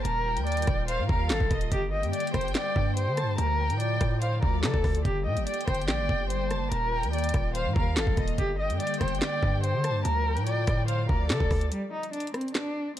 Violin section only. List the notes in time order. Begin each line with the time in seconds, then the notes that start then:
0.26 G5
0.88 F5
1.09 F5
1.51 D#5
1.93 G5
3.18 A5
3.59 G5
4.21 F5
4.43 D5
5.26 G5
6.50 A5
6.92 G5
7.55 F5
7.76 F5
8.18 D#5
8.60 G5
9.84 A5
10.26 G5
10.88 F5
11.09 D5